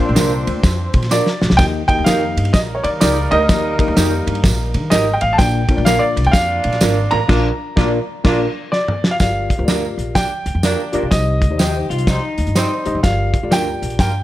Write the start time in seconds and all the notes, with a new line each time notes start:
Already playing: A#2 F3 C4 D4 C5 F5
0.00 A#3 D4 F4 A#4
0.05 A#1 D5
0.15 C2 D4 F4 A#4, snare, ride, tambourine
0.47 D2, ride
0.63 F2, kick, snare, ride, tambourine
0.94 A#2, kick, ride
1.02 snare, ride
1.11 D4 F4 A#4 D5, snare, tambourine
1.27 snare
1.42 A#1, snare
1.50 C2, snare
1.57 D#2 D#3 A#3 D#4 G4 A#4 D#5 G5, kick, snare, ride, tambourine
1.88 A#3 D#4 F#4 A#4 D#5 G5, kick, ride
1.95 D#2 G4
2.04 F2 D#4 G4 A#4 F5, snare, ride, tambourine
2.37 G2, ride
2.45 ride
2.53 A#1 G3 A#3 D#4 A#4 D#5, kick, snare, ride, tambourine
2.75 C#5
2.83 D#3 D5, ride
3.00 C#2 D#4 G4 A#4 D5, snare, ride, tambourine
3.31 D2 D#4 G4 A#4 D#5, ride
3.49 D#2 D#3 A#3 D#4 G4 A#4 D#5, kick, snare, ride, tambourine
3.79 A#3 D#4 G4 A#4 D#5, kick, ride
3.88 D#2
3.96 F2 D#4 G4 A#4, snare, ride, tambourine
4.27 G2, ride
4.35 ride
4.44 A#1, kick, snare, ride, tambourine
4.74 D#3, ride
4.90 G#1 D#4 G4 A#4 D#5, snare, ride, tambourine
5.14 G5
5.21 A1 F5, ride
5.33 A5
5.38 A#1 A#2 A#3 D4 F4 A#4 D5 G5, kick, snare, ride, tambourine
5.69 A#3 D4 F4 A#4 C#5, kick, ride
5.77 A#1 D5
5.85 D4 F4 A#4 F5, snare, ride, tambourine
5.99 D5
6.16 C2, ride
6.24 D2 G5, ride
6.31 F2 A#3 D4 F4 D5 F5, kick, snare, ride, tambourine
6.64 A#2, ride
6.72 snare, ride
6.81 G#1 D4 F4 A#4, snare, ride, tambourine
7.11 A1 D4 F4 A#4 A#5, ride
7.28 A#1 A#2 A#3 D4 F4 A#4 D5, kick, snare, crash
7.76 A#1 A#3 D4 F4 A#4 D5, kick, snare
8.24 A#1 A#3 D4 F4 A#4 D5, kick, snare, crash
8.72 D5, snare
8.88 mid tom
9.04 snare
9.11 F5
9.20 G1 G2 F4 G4 A#4 D5 F5, kick, snare, closed hi-hat, tambourine
9.50 kick, closed hi-hat
9.58 D2 F4 G4 A#4 C5
9.65 D4 F4 D5, snare, closed hi-hat, tambourine
9.70 A#4
9.98 A#1, closed hi-hat
10.15 A#3 D4 G4 D5 G5, kick, snare, closed hi-hat, tambourine
10.46 D2, closed hi-hat
10.55 F2
10.63 A#3 D4 F4 G4 A#4 D5, snare, closed hi-hat, tambourine
10.92 F2 D4 F4 G4 A#4 D5, closed hi-hat
11.03 B1
11.11 C2 C3 D#4 G4 C5 D#5, kick, snare, closed hi-hat, tambourine
11.42 kick, closed hi-hat
11.51 D#2 D#4 G4 C5 D5
11.58 D#4 G4 C5 D#5, snare, closed hi-hat, tambourine
11.90 C2 F4, closed hi-hat
11.98 closed hi-hat
12.07 G3 C4 D#4 C5, kick, snare, closed hi-hat, tambourine
12.38 D#2, closed hi-hat
12.47 G2, closed hi-hat
12.55 G3 C4 D#4 G4 C5, snare, closed hi-hat, tambourine
12.85 G2 D#4 G4 C5 D#5, closed hi-hat
12.95 F#1
13.03 G1 G2 F4 G4 A#4 D5 F5, kick, snare, closed hi-hat, tambourine
13.34 kick, closed hi-hat
13.43 D2 F4 G4 A4 D5
13.50 D4 F4 A#4 G5, snare, closed hi-hat, tambourine
13.82 A#1, closed hi-hat
13.90 closed hi-hat
13.99 G2 G3 A#3 F4 A#4 G5, kick, snare, closed hi-hat, tambourine